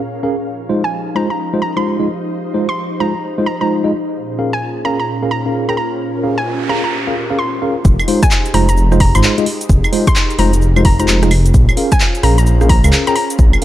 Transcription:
Already playing: A#2 C#4 F4 G#4 A#4 F5
0.23 C#4 G#4 A#4 F5
0.46 F3 D#4 G4 C5
0.69 G#3 D#4 F4 C5
0.80 C5
0.84 G#5
1.15 G#3 D#4 F4 C5 A#5
1.30 A#5
1.53 G#3 D#4 F4 C5
1.62 A#5
1.76 G#3 D#4 F4 C5 C6
2.00 G#3 D#4 F4 D#5
2.54 G#3 D#4 F4 C5
2.69 C6
3.00 G#3 D#4 F4 C5 A#5
3.38 G#3 D#4 F4 C5
3.46 A#5
3.61 G#3 D#4 F4 C5 A#5
3.84 G#3 D#4 F4 D#5
4.15 A#2 C#4 F4 G#4
4.39 C#4 G#4 A#4 F5
4.53 G#5
4.85 C#4 G#4 A#4 F5 A#5
5.00 A#5
5.23 C#4 G#4 A#4 F5
5.31 A#5
5.46 C#4 G#4 A#4 F5
5.69 C#4 G#4 A#4 G5 A#5
5.77 A#5
6.00 G4, noise sweep
6.23 C#4 G#4 A#4 F5
6.38 G#5
6.69 C#4 G#4 A#4 F5 A#5
6.84 A#5
7.07 C#4 G#4 A#4 F5
7.30 C#4 G#4 A#4 F5
7.39 C6
7.62 C#4 G#4 A#4 F5
7.85 F1 D#4 G4 G#4 C5, kick, cabasa
7.99 cabasa, claves
8.08 G#3 D#4 F4 C5, open hi-hat
8.23 G#5, kick, cross-stick, closed hi-hat, cabasa
8.31 clap, cabasa
8.46 closed hi-hat, cabasa
8.54 F1 G#3 D#4 F4 C5 A#5, cross-stick, open hi-hat
8.69 A#5, closed hi-hat, cabasa
8.77 cabasa
8.92 G#3 D#4 F4 C5, cross-stick, cabasa
9.00 A#5, kick, open hi-hat
9.15 G#1 G#3 D#4 F4 C5 C6, closed hi-hat, cabasa, claves
9.23 clap, cabasa
9.38 G#3 D#4 F4 D#5, closed hi-hat, cabasa
9.46 open hi-hat
9.61 closed hi-hat, cabasa
9.69 F1 A#4, kick, cabasa
9.84 cabasa, claves
9.93 G#3 D#4 F4 C5, open hi-hat
10.07 C6, kick, cross-stick, closed hi-hat, cabasa
10.16 clap, cabasa
10.30 closed hi-hat, cabasa
10.39 F1 G#3 D#4 F4 C5 A#5, open hi-hat
10.53 closed hi-hat, cabasa
10.62 cabasa
10.76 G#3 D#4 F4 C5, cabasa, claves
10.85 F1 A#5, kick, open hi-hat
11.00 G#3 D#4 F4 C5 A#5, closed hi-hat, cabasa
11.08 clap, cabasa
11.23 G#3 D#4 F4 D#5, cross-stick, closed hi-hat, cabasa
11.31 open hi-hat, claves
11.46 closed hi-hat, cabasa
11.54 A#1 C#4 F4 G#4 C5, kick, cabasa
11.69 cabasa, claves
11.77 C#4 G#4 A#4 F5, open hi-hat
11.92 G#5, kick, cross-stick, closed hi-hat, cabasa
12.00 clap, cabasa
12.15 closed hi-hat, cabasa
12.23 A#1 C#4 G#4 A#4 F5 A#5, cross-stick, open hi-hat
12.38 A#5, closed hi-hat, cabasa
12.46 cabasa
12.61 C#4 G#4 A#4 F5, cross-stick, cabasa
12.69 A#5, kick, open hi-hat
12.84 C#2 C#4 G#4 A#4 F5, closed hi-hat, cabasa, claves
12.93 clap, cabasa
13.07 C#4 G#4 A#4 G5 A#5, closed hi-hat, cabasa
13.16 A#5, open hi-hat
13.30 closed hi-hat, cabasa
13.39 A#1 A#4, kick, cabasa
13.53 cabasa, claves

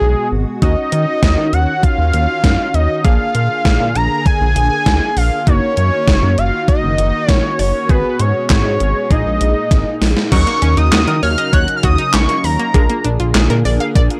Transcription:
Already playing: B2 G#3 B3 F#4 G#4
0.01 B1
0.32 G#1
0.62 D#2 D#3 C#4 D#4 F#4 D#5, kick, closed hi-hat
0.92 D#3, closed hi-hat
1.23 D#2, kick, snare, closed hi-hat
1.38 D#3
1.53 D#2 F#5, closed hi-hat
1.83 F5, kick, closed hi-hat
1.98 D#2
2.14 D#2, closed hi-hat
2.44 F#2, kick, snare, closed hi-hat
2.74 D#2 D#5, closed hi-hat
3.05 A#1 D3 A#3 D4 G#4 F5, kick, closed hi-hat
3.35 A#2, closed hi-hat
3.65 A#1, kick, snare, closed hi-hat
3.80 A#2
3.95 A#1 A#5, closed hi-hat
4.26 G#5, kick, closed hi-hat
4.41 A#1
4.56 A#1, closed hi-hat
4.86 D2, kick, snare, closed hi-hat
5.17 A#1 F5, open hi-hat
5.47 F#1 D#3 A#3 D#4 F#4 C#5, kick, closed hi-hat
5.77 F#2, closed hi-hat
6.08 F#1, kick, snare, closed hi-hat
6.23 F#2
6.38 F#1 F5, closed hi-hat
6.68 D#5, kick, closed hi-hat
6.83 F#1
6.98 F#1, closed hi-hat
7.29 A#1 C#5, kick, snare, closed hi-hat
7.59 F#1 C#5, open hi-hat
7.89 G#1 B2 G#3 B3 F#4 G#4 B4, kick, closed hi-hat
8.20 G#2 C#5, closed hi-hat
8.50 G#1 C#5, kick, snare, clap, closed hi-hat
8.65 G#2
8.80 G#1, closed hi-hat
9.10 A#1 A#2 A#3 D#4 G#4 D#5, kick, closed hi-hat
9.26 A#1
9.41 A#1, closed hi-hat
9.71 G#1, kick, snare, closed hi-hat
10.01 A#1, snare, open hi-hat
10.17 snare
10.32 D#2 C#3 F#3 C#4 D#4 F#4 A#4 C#6, kick, closed hi-hat, crash
10.47 A#3, closed hi-hat
10.62 D#2 C#4, closed hi-hat
10.77 D#2 D#4 D#6, closed hi-hat
10.92 D#2 F#4, snare, clap, closed hi-hat
11.08 D#3 A#4, closed hi-hat
11.23 D#2 C#5 F6, open hi-hat
11.38 D#5, closed hi-hat
11.53 D#2 C#5 F#6, kick, closed hi-hat
11.68 closed hi-hat
11.76 F6
11.83 D#2 F#4 D#6, kick, closed hi-hat
11.98 D#4, closed hi-hat
12.14 A#1 C#4 C#6, snare, clap, closed hi-hat
12.29 A#3, closed hi-hat
12.44 D#2 A#5, open hi-hat
12.59 A#3, closed hi-hat
12.74 A#1 D3 G#3 A#3 D4 F4 G#4 A#4, kick, closed hi-hat
12.89 A#3, closed hi-hat
13.04 A#1 D4, closed hi-hat
13.20 A#1 F4, closed hi-hat
13.35 A#1 G#4, snare, clap, closed hi-hat
13.50 A#2 A#4, closed hi-hat
13.65 A#1 D5, open hi-hat
13.80 F5, closed hi-hat
13.95 A#1 D5, kick, closed hi-hat
14.10 closed hi-hat

